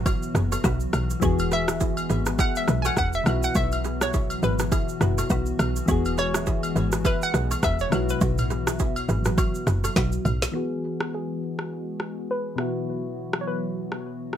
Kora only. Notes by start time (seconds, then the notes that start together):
0.06 F#4 C#5
0.35 G#4 B4
0.52 A4 C#5
0.64 F#4 B4
1.22 G#4 C#5
1.52 G#4 B4
1.68 E4 G#4
1.80 E4 G#4
2.10 G#4 B4
2.26 G#4 B4
2.39 E4 G#4
2.68 G#4 B4
2.85 A4 C#5
2.97 G#4 B4
3.55 F#4 C#5
3.84 G#4 B4
4.01 E4 G#4
4.14 E4 G#4
4.43 G#4 B4
4.60 G#4 B4
4.72 E4 G#4
5.01 G#4 B4
5.18 A4 C#5
5.30 F#4 B4
5.89 G#4 C#5
6.18 G#4 B4
6.35 E4 G#4
6.47 E4 G#4
6.76 G#4 B4
6.93 G#4 B4
7.05 E4 G#4
7.34 G#4 B4
7.51 A4 C#5
7.63 G#4 B4
8.21 F#4 C#5
8.50 G#4 B4
8.67 E4 G#4
8.80 E4 G#4
9.09 G#4 B4
9.26 G#4 B4
9.38 F#4 C#5
9.67 G#4 B4
9.84 A4 C#5
9.96 F#4 B4